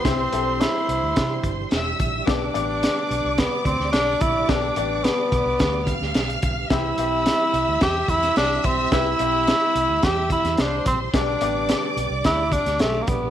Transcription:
<<
  \new Staff \with { instrumentName = "Violin section" } { \time 4/4 \key c \major \tempo 4 = 108 <c'' c'''>2. <e'' e'''>4 | <d'' d'''>1~ | <d'' d'''>2~ <d'' d'''>8 <f'' f'''>4. | <e'' e'''>1~ |
<e'' e'''>2. <c'' c'''>4 | <d'' d'''>1 | }
  \new Staff \with { instrumentName = "Upright piano" } { \time 4/4 \key c \major <c' e' g' e''>8 <c' e' g' a'>4 r2 r8 | <b d' g' d''>8 <b d' g' d''>4 r2 r8 | <b d' g' a'>8 <b d' g' d''>4 r2 r8 | <c' e' g' e''>8 <c' e' g' e''>4 r2 r8 |
<c' e' g' b'>8 <c' e' g' e''>4 r2 r8 | <b d' g' d''>8 <b d' g' d''>4 r2 r8 | }
  \new Staff \with { instrumentName = "Upright piano" } { \clef bass \time 4/4 \key c \major e4. r2 r8 | b,4. r2 r8 | b,4. r2 r8 | e4. r2 r8 |
e4. r2 r8 | b,4. r2 r8 | }
  \new Staff \with { instrumentName = "Tenor saxophone" } { \time 4/4 \key c \major c'4 e'2 r4 | d'2 b8 c'8 d'8 e'8 | d'4 b2 r4 | e'2 g'8 e'8 d'8 c'8 |
e'2 g'8 e'8 d'8 c'8 | d'4. r8 e'8 d'8 a16. bes32 b8 | }
  \new Staff \with { instrumentName = "Tonewheel organ" } { \time 4/4 \key c \major <g g'>1~ | <g g'>1~ | <g g'>1~ | <g g'>1~ |
<g g'>1 | <g g'>1 | }
  \new Staff \with { instrumentName = "Tonewheel organ" } { \clef bass \time 4/4 \key c \major <e d'>1 | <d b>1~ | <d b>1 | r1 |
r1 | d1 | }
  \new Staff \with { instrumentName = "Fingered electric bass" } { \clef bass \time 4/4 \key c \major c,8 b,,8. r16 c,16 d,16 c8 g,,8 e,,8 bes,,8 | b,,8 a,,8. r16 b,,16 c,8 r16 d,16 d,16 b,,8 bes,,8 | b,,8 a,,8. r16 b,,16 c,16 d,8. d,16 b,,8 b,,8 | c,8 b,,8. r16 c,16 d,16 e,8 e,8 c,8 b,,8 |
c,8 b,,8. r16 c,16 d,16 e,8. e,16 c,8 bes,,8 | b,,8 a,,8. r16 b,,16 c,16 d,8. d,16 b,,8 bes,,8 | }
  \new DrumStaff \with { instrumentName = "Drums" } \drummode { \time 4/4 <hh bd sn>8 hh8 <hh sn>8 hh8 <hh bd sn>8 <hh bd>8 <hh sn>8 <hh bd>8 | <hh bd sn>8 hh8 <hh sn>8 hh8 <hh bd sn>8 <hh bd>16 sn16 <hh sn>8 <hh bd>8 | <hh bd sn>8 hh8 <hh sn>8 <hh bd>8 <hh bd sn>8 <hh bd>16 sn16 <hh sn>16 hh16 <hh bd>8 | <hh bd sn>8 hh8 <hh sn>8 hh8 <hh bd sn>8 <hh bd>16 <hh sn>16 <hh sn>8 <hh bd>8 |
<hh bd sn>8 hh8 <hh sn>8 hh8 <hh bd sn>8 <hh bd>16 <hh sn>16 <hh sn>8 <hh bd>8 | <hh bd sn>8 hh8 <hh sn>8 hh8 <hh bd sn>8 <hh bd>16 <hh sn>16 <hh sn>8 <hh bd>8 | }
>>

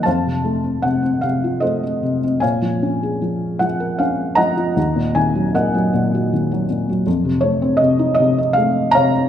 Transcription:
<<
  \new Staff \with { instrumentName = "Felt piano" } { \time 3/4 \key f \phrygian \tempo 4 = 78 << { a''4 ges''8 f''8 ees''8. r16 | aes''4. ges''8 f''8 bes''8~ | bes''8 aes''8 ges''4. r8 | r8 des''8 ees''8 ees''8 f''8 bes''8 | } \\ { <c'' f''>4. r8 <a' c''>4 | <des'' f''>4. r4 <ees'' ges''>8~ | <ees'' ges''>4 <bes' ees''>4. r8 | r2 r8 <des'' f''>8 | } >> }
  \new Staff \with { instrumentName = "Felt piano" } { \clef bass \time 3/4 \key f \phrygian f,16 c16 a16 c'16 c16 c'16 c16 f'16 a16 c'16 c16 c'16 | bes,16 f16 des'16 aes'16 f8 f16 bes'16 des'8 f16 f'16 | ees,16 bes,16 ees16 ges16 bes,16 ges16 bes,16 ges'16 ees16 ges16 bes,16 ges16 | f,16 c16 a16 c'16 c16 ees'16 c16 ees''16 a8 c16 c'16 | }
>>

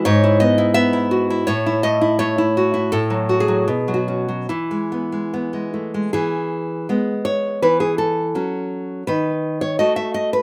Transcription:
\new Staff \with { instrumentName = "Nylon-string guitar" } { \time 2/4 \key e \major \tempo 4 = 82 << { cis''8 dis''8 e''4 | cis''8 dis''8 cis''4 | \tuplet 3/2 { a'4 gis'8~ gis'8 fis'4 } | e'4. r8 |
gis'4. cis''8 | b'16 gis'16 a'4. | b'8. cis''16 dis''16 e''16 dis''16 b'16 | } \\ { gis,16 e'16 b16 e'16 b16 e'16 fis'16 e'16 | a,16 e'16 a16 e'16 a16 e'16 fis'16 e'16 | a,16 fis16 fis'16 fis16 b,16 fis16 cis'16 fis16 | e16 gis16 b16 gis16 b16 gis16 a16 gis16 |
e4 <gis b>4 | e4 <fis cis'>4 | dis4 <a fis'>4 | } >> }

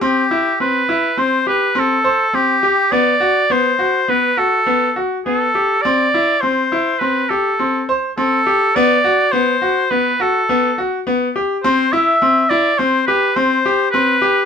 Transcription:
<<
  \new Staff \with { instrumentName = "Oboe" } { \time 5/4 \key c \lydian \tempo 4 = 104 g'4 b'4 c''8 b'8 a'4 g'4 | d''4 c''4 b'8 a'4 r8 a'4 | d''4 c''4 b'8 a'4 r8 a'4 | d''4 c''4 b'8 a'4 r4. |
c''8 e''4 d''8 c''8 b'8 c''4 b'4 | }
  \new Staff \with { instrumentName = "Grand piano" } { \time 5/4 \key c \lydian c'8 e'8 c'8 e'8 c'8 g'8 c'8 c''8 c'8 g'8 | b8 fis'8 b8 fis'8 b8 fis'8 b8 fis'8 b8 g'8 | c'8 e'8 c'8 e'8 c'8 g'8 c'8 c''8 c'8 g'8 | b8 fis'8 b8 fis'8 b8 fis'8 b8 fis'8 b8 g'8 |
c'8 e'8 c'8 e'8 c'8 g'8 c'8 g'8 c'8 g'8 | }
>>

